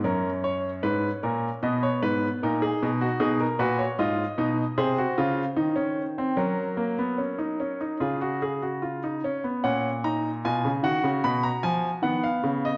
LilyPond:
<<
  \new Staff \with { instrumentName = "Grand piano" } { \time 4/4 \key ces \lydian \tempo 4 = 75 << { bes'8 des''8 ces''8 bes'8 dis''16 des''16 b'8 ais'16 aes'8 fis'16 | \key fis \major gis'16 ais'16 b'16 cis''16 dis''4 c''2 | ais'2 gis'4. r8 | fis''8 ais''8 gis''8 fis''8 b''16 ais''16 gis''8 fis''16 eis''8 dis''16 | } \\ { des'2 b4 dis'4 | dis'8 fis'8 eis'8 dis'8 gis'16 ges'16 eis'8 ees'16 cis'8 c'16 | cis'8 ais16 b16 cis'16 dis'16 cis'16 dis'16 eis'16 fis'16 gis'16 fis'16 eis'16 dis'16 cis'16 b16 | cis'8 dis'8 eis'8 fis'4. b4 | } >> }
  \new Staff \with { instrumentName = "Grand piano" } { \clef bass \time 4/4 \key ces \lydian ges,4 aes,8 bes,8 b,8 aes,8 ais,8 b,8 | \key fis \major b,8 ais,8 gis,8 b,8 c8 cis8 ees4 | fis2 cis4. r8 | ais,4 b,16 cis16 dis16 cis16 b,8 eis8 dis8 cis8 | }
>>